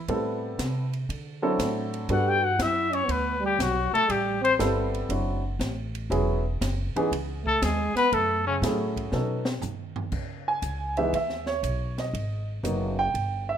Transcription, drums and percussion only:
0.08 kick soft
0.08 ride soft
0.59 kick soft
0.59 snare medium
0.59 hi-hat pedal medium
0.59 ride medium
0.93 ride soft
1.09 kick soft
1.09 ride medium
1.59 kick soft
1.59 snare medium
1.59 hi-hat pedal medium
1.59 ride medium
1.94 ride soft
2.09 kick soft
2.09 ride medium
2.59 kick soft
2.59 snare medium
2.59 hi-hat pedal medium
2.59 ride medium
2.93 ride soft
3.09 kick soft
3.09 ride medium
3.59 kick soft
3.59 snare medium
3.59 hi-hat pedal medium
3.59 ride medium
3.95 ride soft
4.09 kick soft
4.09 ride medium
4.45 ride soft
4.59 kick soft
4.59 snare medium
4.59 hi-hat pedal medium
4.59 ride medium
4.94 ride soft
5.09 kick soft
5.09 ride medium
5.60 kick soft
5.60 snare medium
5.60 hi-hat pedal medium
5.60 ride medium
5.95 ride soft
6.11 kick soft
6.11 ride medium
6.61 kick soft
6.61 snare medium
6.61 hi-hat pedal medium
6.61 ride medium
6.96 ride soft
7.11 kick soft
7.11 ride medium
7.46 kick medium
7.62 kick soft
7.62 snare medium
7.62 hi-hat pedal medium
7.62 ride medium
7.96 snare soft
7.96 ride soft
8.12 kick soft
8.12 ride medium
8.62 kick soft
8.62 snare medium
8.62 hi-hat pedal medium
8.62 ride medium
8.96 kick soft
8.96 ride soft
9.12 snare medium
9.45 snare medium
9.62 floor tom medium
9.62 hi-hat pedal medium
9.96 floor tom medium
10.12 kick medium
10.12 crash medium
10.62 kick soft
10.62 hi-hat pedal medium
10.62 ride medium
10.97 ride soft
11.13 kick soft
11.13 ride medium
11.30 snare soft
11.46 snare soft
11.63 kick soft
11.63 hi-hat pedal medium
11.63 ride medium
11.98 snare soft
11.98 ride soft
12.14 kick soft
12.14 ride medium
12.64 kick soft
12.64 hi-hat pedal soft
12.64 ride medium
13.14 kick soft
13.14 ride medium

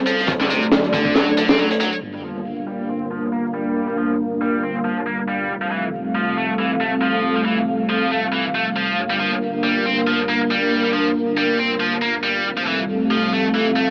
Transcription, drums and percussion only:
0.06 closed hi-hat medium
0.06 tambourine medium
0.19 closed hi-hat soft
0.19 tambourine soft
0.27 kick loud
0.27 closed hi-hat medium
0.27 tambourine soft
0.41 snare soft
0.41 tambourine soft
0.50 closed hi-hat medium
0.50 tambourine medium
0.62 tambourine soft
0.72 snare loud
0.72 closed hi-hat medium
0.72 tambourine soft
0.84 closed hi-hat soft
0.84 tambourine soft
0.94 kick loud
0.94 closed hi-hat medium
0.94 tambourine medium
1.05 kick loud
1.05 tambourine soft
1.15 snare medium
1.15 closed hi-hat medium
1.15 tambourine soft
1.28 tambourine soft
1.37 closed hi-hat medium
1.37 tambourine medium
1.48 snare loud
1.48 closed hi-hat medium
1.48 tambourine soft
1.59 tambourine soft
1.71 closed hi-hat medium
1.71 tambourine soft
1.80 closed hi-hat medium
1.80 tambourine medium
1.93 tambourine soft

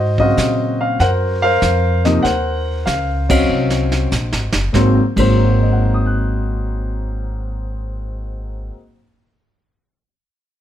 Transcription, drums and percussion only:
0.18 kick soft
0.37 kick soft
0.37 snare medium
0.37 hi-hat pedal medium
1.00 brush sweep soft
1.00 kick soft
1.00 snare soft
1.62 kick soft
1.62 snare medium
1.62 hi-hat pedal medium
2.05 snare soft
2.24 brush sweep medium
2.24 kick soft
2.24 snare soft
2.87 kick soft
2.87 snare medium
2.87 hi-hat pedal medium
3.30 kick medium
3.30 crash medium
3.70 snare medium
3.92 snare medium
4.12 snare medium
4.12 hi-hat pedal medium
4.33 snare medium
4.52 snare medium
4.74 kick medium
4.74 snare medium
5.17 kick medium
5.17 crash medium

